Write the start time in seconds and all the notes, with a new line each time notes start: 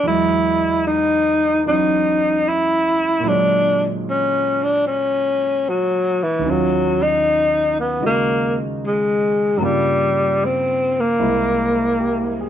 0.03 E2 E3 F#3
0.07 G#3 E4 D#5
0.87 D#4
1.66 E3 F#3 C#4 D#4
2.48 E4
3.20 A#2 F#3
3.26 G#3 D4 C#5
3.32 D3
4.10 C#4
4.63 D4
4.87 C#4
5.69 F#3
6.23 E3
6.39 D#2 D#3
6.44 F#3 C#4
6.50 F#3 F4
7.02 D#4
7.80 B3
8.01 C#3 G#3 D#4 F#4
8.06 A#3
8.87 G#3
9.57 G2 C#3 F#3 G3 A#3
9.63 G3 F4
10.45 C4
11.00 A#3
11.19 C2 C3 G#3 A#3 E4
12.00 G4
12.41 G#4